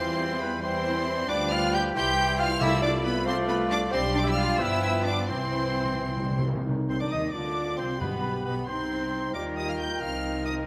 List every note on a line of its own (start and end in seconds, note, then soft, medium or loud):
0.00 1.27 E2 medium
0.00 0.62 E3 medium
0.00 0.62 G3 medium
0.00 2.57 G3 medium
0.00 0.41 C4 loud
0.00 0.62 E4 medium
0.00 0.63 F4 medium
0.00 0.40 C5 loud
0.00 0.41 C5 loud
0.00 0.61 C5 medium
0.00 0.62 G5 medium
0.00 0.41 C6 loud
0.41 0.64 B3 medium
0.41 0.51 B4 medium
0.41 0.64 B4 medium
0.41 0.63 B5 loud
0.62 1.27 E3 medium
0.62 1.27 G3 medium
0.62 1.28 C4 loud
0.62 1.28 E4 medium
0.62 1.30 E4 medium
0.62 1.27 C5 medium
0.62 1.29 C5 loud
0.62 1.28 C5 loud
0.62 1.28 G5 medium
0.62 1.28 C6 loud
1.28 1.92 D2 loud
1.28 1.96 F3 medium
1.28 1.91 G3 medium
1.28 1.51 D4 loud
1.28 1.91 D4 loud
1.28 1.94 F4 medium
1.28 1.91 B4 medium
1.28 1.37 D5 loud
1.28 1.54 D5 loud
1.28 1.91 G5 medium
1.28 1.52 D6 loud
1.50 1.73 F4 loud
1.50 1.73 F5 loud
1.50 1.76 F5 loud
1.50 1.73 F6 loud
1.73 1.93 G4 loud
1.73 1.82 G5 loud
1.73 1.96 G5 loud
1.73 1.82 G6 loud
1.94 2.59 C2 loud
1.94 2.63 E3 loud
1.94 3.23 G3 medium
1.94 3.26 E4 loud
1.94 2.61 E4 medium
1.94 2.38 G4 loud
1.94 2.63 C5 medium
1.94 2.61 G5 loud
1.94 2.38 G5 loud
1.94 2.39 G6 loud
2.38 2.46 F4 loud
2.38 2.49 F5 loud
2.38 2.61 F5 loud
2.38 2.61 F6 loud
2.60 3.90 C2 loud
2.60 3.22 C3 loud
2.60 3.76 A3 loud
2.60 3.09 A3 medium
2.60 2.82 E4 loud
2.60 3.76 F4 loud
2.60 3.10 D5 loud
2.60 2.81 E5 loud
2.60 2.83 E5 loud
2.60 3.01 F5 medium
2.60 2.83 E6 loud
2.82 2.90 D4 loud
2.82 2.92 D5 loud
2.82 3.04 D5 loud
2.82 2.91 D6 loud
3.03 3.25 B3 loud
3.03 3.26 B4 loud
3.03 3.27 B4 loud
3.03 3.26 B5 loud
3.25 3.92 A3 loud
3.25 3.95 A3 loud
3.25 3.33 C4 loud
3.25 3.92 F4 medium
3.25 3.47 C5 loud
3.25 3.34 C5 loud
3.25 3.91 D5 loud
3.25 3.94 F5 loud
3.25 3.36 C6 loud
3.47 3.55 B3 loud
3.47 3.69 B4 loud
3.47 3.70 B4 loud
3.47 3.57 B5 loud
3.69 3.78 D4 loud
3.69 3.90 D5 loud
3.69 3.92 D5 loud
3.69 3.80 D6 loud
3.91 4.56 B1 loud
3.91 4.56 G3 loud
3.91 4.61 G3 medium
3.91 4.56 G3 loud
3.91 4.00 C4 loud
3.91 4.56 D4 medium
3.91 4.56 G4 loud
3.91 4.01 C5 loud
3.91 4.14 C5 loud
3.91 4.61 D5 loud
3.91 4.59 G5 medium
3.91 4.15 C6 loud
4.12 4.19 D4 loud
4.12 4.25 D5 loud
4.12 4.26 D5 loud
4.17 4.27 D6 loud
4.24 4.30 E4 loud
4.24 4.37 E5 loud
4.24 4.30 E5 loud
4.29 4.39 E6 loud
4.35 4.59 F4 loud
4.35 4.57 F5 loud
4.35 4.60 F5 loud
4.35 4.60 F6 loud
4.58 5.29 G1 loud
4.58 5.27 F3 medium
4.58 5.31 F3 loud
4.58 5.29 B3 medium
4.58 5.06 E4 loud
4.58 5.29 F4 medium
4.58 5.29 B4 medium
4.58 5.07 E5 loud
4.58 5.04 E5 loud
4.58 5.28 G5 loud
4.58 5.05 E6 loud
5.06 5.29 D4 loud
5.06 5.29 D5 medium
5.06 5.31 D5 medium
5.06 5.29 D6 loud
5.28 6.47 C2 medium
5.28 5.36 C3 soft
5.28 5.92 E3 medium
5.28 6.45 E3 medium
5.28 6.44 C4 medium
5.28 5.92 C4 medium
5.28 6.45 C4 medium
5.28 6.44 E4 medium
5.28 6.44 C5 medium
5.28 6.42 C5 medium
5.28 6.45 C5 medium
5.28 6.42 G5 medium
5.28 6.42 C6 loud
5.37 5.44 C3 soft
5.45 5.52 C3 soft
5.54 5.60 C3 soft
5.62 5.68 C3 medium
5.70 5.76 C3 medium
5.77 5.84 C3 medium
5.85 5.92 C3 medium
5.93 5.98 C3 medium
5.93 6.02 E3 medium
6.00 6.07 C3 medium
6.08 6.15 C3 medium
6.08 6.21 F3 medium
6.17 6.23 C3 medium
6.17 6.44 G3 medium
6.24 6.30 C3 medium
6.31 6.38 C3 medium
6.39 6.46 C3 loud
6.39 6.66 F3 medium
6.47 6.54 C3 loud
6.55 6.62 C3 loud
6.64 7.29 D#4 medium
6.69 7.31 C3 loud
6.89 6.95 C2 medium
6.89 6.94 C3 medium
6.89 6.94 C4 medium
6.89 7.01 C4 medium
6.89 6.99 C5 medium
6.89 6.95 C5 medium
6.89 7.00 C6 medium
6.89 6.96 C6 medium
7.00 7.06 D3 medium
7.00 7.11 D4 medium
7.00 7.12 D4 medium
7.00 7.07 D4 medium
7.00 7.11 D5 medium
7.00 7.06 D5 medium
7.00 7.12 D6 medium
7.00 7.11 D6 medium
7.11 7.34 D#2 medium
7.11 7.34 D#3 medium
7.11 7.20 D#4 medium
7.11 7.22 D#4 medium
7.11 7.35 D#4 medium
7.11 7.33 D#5 medium
7.11 7.23 D#5 medium
7.11 7.34 D#6 medium
7.11 7.17 D#6 medium
7.32 7.78 D2 medium
7.32 7.78 D3 medium
7.32 7.77 D4 medium
7.32 7.78 D4 medium
7.32 7.99 F4 medium
7.32 7.77 D5 medium
7.32 7.77 D6 medium
7.36 7.81 D5 medium
7.77 8.01 C2 medium
7.77 8.01 C3 medium
7.77 7.88 C4 medium
7.77 8.00 C4 medium
7.77 8.01 C4 medium
7.77 8.00 C5 medium
7.77 8.01 C5 medium
7.77 7.83 C6 medium
7.77 8.00 C6 medium
7.98 8.45 B1 medium
7.98 8.64 G2 medium
7.98 8.44 B2 medium
7.98 8.44 B3 medium
7.98 8.66 G4 medium
7.98 8.44 B4 medium
7.98 8.45 B4 medium
7.98 8.43 B5 medium
7.98 8.45 B5 medium
8.43 8.68 B1 medium
8.43 8.67 B2 medium
8.43 8.67 B3 medium
8.43 8.55 B4 medium
8.43 8.56 B4 medium
8.43 8.69 B5 medium
8.43 8.67 B5 medium
8.67 9.33 C2 medium
8.67 9.33 C3 medium
8.67 9.34 C4 medium
8.67 9.35 C4 medium
8.67 9.33 D#4 medium
8.67 9.33 C5 medium
8.67 9.36 C5 medium
8.67 9.33 C6 medium
8.67 9.34 C6 medium
9.34 9.97 D#2 medium
9.34 9.97 D#3 medium
9.34 10.63 D#3 medium
9.34 9.97 G3 medium
9.34 9.97 A#3 medium
9.34 10.01 F4 medium
9.34 9.97 G4 medium
9.34 10.67 A#4 medium
9.34 9.97 A#4 medium
9.34 9.56 D5 medium
9.34 10.39 G5 medium
9.34 9.42 D6 medium
9.57 9.62 D#5 medium
9.57 9.68 D#6 loud
9.69 9.73 F5 medium
9.69 9.79 F6 medium
9.80 10.03 G5 medium
9.80 10.01 G6 loud
10.01 10.66 C2 medium
10.01 10.66 C3 medium
10.01 10.67 F3 medium
10.01 10.67 C4 medium
10.01 10.67 D#4 medium
10.01 10.66 A#4 medium
10.01 10.45 F5 medium
10.01 10.44 F6 loud
10.45 10.55 D#5 medium
10.45 10.53 D#6 loud